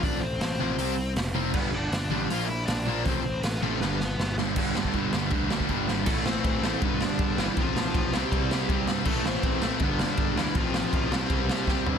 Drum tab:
CC |----------------|x---------------|----------------|x---x---x---x---|
RD |----------------|----------------|----------------|----------------|
HH |o---o---o---o---|----o---o---o---|o---o-----------|----------------|
SD |----o-------o---|----o-------o---|----o---o-o-o-o-|--o---o---o---o-|
FT |----------------|----------------|----------------|----------------|
BD |o---------------|o---------------|o---------------|o--oo---o--oo---|

CC |x---------------|----------------|x---------------|----------------|
RD |----x---x---x---|x---x---x---x---|----x---x---x---|x---x---x-------|
HH |----------------|----------------|----------------|----------------|
SD |--o---o---o---o-|--o---o---o---o-|--o---o---o---o-|--o---o---o-o---|
FT |----------------|----------------|----------------|--------------o-|
BD |o---o---o---o---|o---o---o---o---|o---o---o---o---|o---o---o---o---|